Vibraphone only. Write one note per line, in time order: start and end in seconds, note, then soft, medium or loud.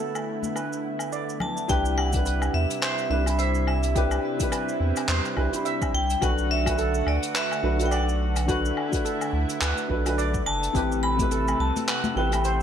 1.42 1.70 A5 medium
1.69 1.98 G5 loud
1.98 2.56 F#5 loud
2.54 2.81 E5 medium
2.82 3.08 E5 loud
3.11 3.37 E5 loud
3.39 3.68 C5 medium
3.68 4.77 E5 medium
5.95 6.23 G5 loud
6.22 6.48 F#5 loud
6.51 7.09 E5 loud
7.08 7.34 D5 medium
7.36 7.88 E5 loud
7.86 7.92 G5 medium
7.92 8.48 F#5 loud
8.49 10.14 F#5 medium
10.46 10.99 A5 loud
11.03 11.61 B5 loud
11.60 11.73 A5 loud
11.89 12.18 F#5 medium
12.17 12.63 G5 medium